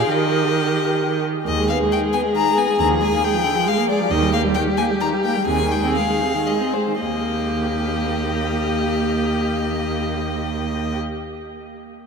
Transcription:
Already playing: A#2 G#4
0.00 F5
0.10 D#3 G4 A#4 D#5
1.47 D#2 D#3 G#4 D#5
1.58 G#3
1.69 B3 F5
1.80 G#3
1.91 D#3 G5
2.02 G#3
2.13 B3 G#5
2.24 G#3
2.35 D#3 A#5
2.46 G#3
2.56 B3 G#5
2.67 G#3
2.79 D#2 D3 A#5
2.90 F3
3.01 G#3 G#5
3.12 A#3
3.23 G#3 G5
3.34 F3
3.45 D3
3.55 F3
3.66 G#3 F5
3.77 A#3
3.88 G#3 D5
3.99 F3
4.10 D#2 D#3 G4 D#5
4.22 G3
4.32 A#3 F5
4.44 G3
4.55 D#3 G5
4.67 G3
4.77 A#3 G#5
4.90 G3
5.01 D#3 A#5
5.13 G3
5.24 A#3 G5
5.36 G3
5.47 D#2 C3 G#4 G#5
5.60 D#3
5.71 G#3 G5
5.84 C4
5.96 G#3 F5
6.09 D#3
6.22 C3
6.35 D#3
6.46 G#3 D#5
6.60 C4
6.73 G#3 C5
6.87 D#3
7.00 D#2 A#3 G4 D#5

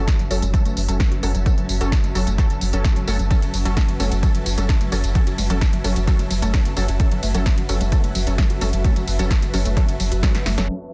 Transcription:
Already playing: F#3 C#4 F#4 A4 B4 E5 A5
0.08 kick, snare, closed hi-hat, tambourine
0.19 F#1 F#3, closed hi-hat, tambourine
0.31 F#1 F#3 C#4 F#4 A4, open hi-hat, tambourine
0.42 F#1 G#3, closed hi-hat, tambourine
0.54 F#3 C#4 A4, kick, closed hi-hat, tambourine
0.65 F#1 A3, closed hi-hat, tambourine
0.77 F#1 F#3, open hi-hat, tambourine
0.89 F#1 F#3 C#4 A4, closed hi-hat, tambourine
1.00 F#3, kick, snare, closed hi-hat, tambourine
1.12 F#1 F#4, closed hi-hat, tambourine
1.23 F#1 F#3 G#3 C#4 A4, open hi-hat, tambourine
1.35 F#1 F#3, closed hi-hat, tambourine
1.46 F#3 A3 C#4 A4, kick, closed hi-hat, tambourine
1.58 F#1 F#3, closed hi-hat, tambourine
1.69 F#1, open hi-hat, tambourine
1.81 F#1 F#3 C#4 A4, closed hi-hat, tambourine
1.92 F#4, kick, snare, closed hi-hat, tambourine
2.04 F#1 G#3, closed hi-hat, tambourine
2.15 F#1 F#3 C#4 A4, open hi-hat, tambourine
2.27 F#1 A3, closed hi-hat, tambourine
2.38 F#3 C#4 A4, kick, snare, closed hi-hat, tambourine
2.50 F#1, closed hi-hat, tambourine
2.61 F#1 F#3, open hi-hat, tambourine
2.73 F#1 F#3 C#4 F#4 A4, closed hi-hat, tambourine
2.84 G#3, kick, snare, closed hi-hat, tambourine
2.96 F#1 F#3, closed hi-hat, tambourine
3.07 F#1 F#3 A3 C#4 A4, open hi-hat, tambourine
3.19 F#1 F#3, closed hi-hat, tambourine
3.31 F#3 C#4 A4, kick, closed hi-hat, ride, tambourine
3.42 F#1, closed hi-hat, ride, tambourine
3.54 F#1 F#3, open hi-hat, ride, tambourine
3.65 F#1 F#3 C#4 F#4 A4, closed hi-hat, ride, tambourine
3.77 G#3, kick, snare, closed hi-hat, ride, tambourine
3.88 F#1 F#3, closed hi-hat, ride, tambourine
4.00 F#1 F#3 A3 C#4 A4, open hi-hat, ride, tambourine
4.12 F#1 F#3, closed hi-hat, ride, tambourine
4.23 F#3 C#4 A4, kick, closed hi-hat, ride, tambourine
4.35 F#1 F#3, closed hi-hat, ride, tambourine
4.46 F#1 F#4, open hi-hat, ride, tambourine
4.58 F#1 F#3 G#3 C#4 A4, closed hi-hat, ride, tambourine
4.69 F#3, kick, snare, closed hi-hat, ride, tambourine
4.81 F#1 A3, closed hi-hat, ride, tambourine
4.92 F#1 F#3 C#4 A4, open hi-hat, ride, tambourine
5.04 F#1, closed hi-hat, ride, tambourine
5.15 F#3 C#4 A4, kick, closed hi-hat, ride, tambourine
5.27 F#1 F#4, closed hi-hat, ride, tambourine
5.38 F#1 G#3, open hi-hat, ride, tambourine
5.50 F#1 F#3 C#4 A4, closed hi-hat, ride, tambourine
5.61 A3, kick, snare, closed hi-hat, ride, tambourine
5.73 F#1 F#3, closed hi-hat, ride, tambourine
5.84 F#1 F#3 C#4 A4, open hi-hat, ride, tambourine
5.96 F#1 F#3, closed hi-hat, ride, tambourine
6.07 F#3 C#4 F#4 A4, kick, snare, closed hi-hat, ride, tambourine
6.19 F#1 G#3, closed hi-hat, ride, tambourine
6.30 F#1 F#3, open hi-hat, ride, tambourine
6.42 F#1 F#3 A3 C#4 A4, closed hi-hat, ride, tambourine
6.54 F#3, kick, snare, closed hi-hat, ride, tambourine
6.65 F#1, closed hi-hat, ride, tambourine
6.77 F#1 F#3 C#4 A4, open hi-hat, ride, tambourine
6.88 F#1 F#4, closed hi-hat, ride, tambourine
7.00 F#3 G#3 C#4 A4, kick, closed hi-hat, ride, tambourine
7.12 F#1 F#3, closed hi-hat, ride, tambourine
7.23 F#1 A3, open hi-hat, ride, tambourine
7.35 F#1 F#3 C#4 A4, closed hi-hat, ride, tambourine
7.46 kick, snare, closed hi-hat, ride, tambourine
7.58 F#1 F#3, closed hi-hat, ride, tambourine
7.69 F#1 F#3 C#4 F#4 A4, open hi-hat, ride, tambourine
7.81 F#1 G#3, closed hi-hat, ride, tambourine
7.92 F#3 C#4 A4, kick, closed hi-hat, ride, tambourine
8.04 F#1 A3, closed hi-hat, ride, tambourine
8.15 F#1 F#3, open hi-hat, ride, tambourine
8.27 F#1 F#3 C#4 A4, closed hi-hat, ride, tambourine
8.38 F#3, kick, snare, closed hi-hat, ride, tambourine
8.50 F#1 F#4, closed hi-hat, ride, tambourine
8.61 F#1 F#3 G#3 C#4 A4, open hi-hat, ride, tambourine
8.73 F#1 F#3, closed hi-hat, ride, tambourine
8.84 F#3 A3 C#4 A4, kick, closed hi-hat, ride, tambourine
8.96 F#1 F#3, closed hi-hat, ride, tambourine
9.07 F#1, open hi-hat, ride, tambourine
9.19 F#1 F#3 C#4 A4, closed hi-hat, ride, tambourine
9.31 F#4, kick, snare, closed hi-hat, ride, tambourine
9.42 F#1 G#3, closed hi-hat, ride, tambourine
9.54 F#1 F#3 C#4 A4, open hi-hat, ride, tambourine
9.65 F#1 A3, closed hi-hat, ride, tambourine
9.77 F#3 C#4 A4, kick, snare, closed hi-hat, ride, tambourine
9.89 F#1, closed hi-hat, ride, tambourine
10.00 F#1 F#3, open hi-hat, ride, tambourine
10.12 F#1 F#4, closed hi-hat, ride, tambourine
10.23 F#3 G#3 C#4 A4, kick, snare, closed hi-hat, ride, tambourine
10.35 F#1 F#3, snare, closed hi-hat, ride, tambourine
10.46 F#1 A3, snare, open hi-hat, ride, tambourine
10.58 F#1 F#3 C#4 A4, snare, closed hi-hat, ride, tambourine
10.69 F#3 C#4, downlifter

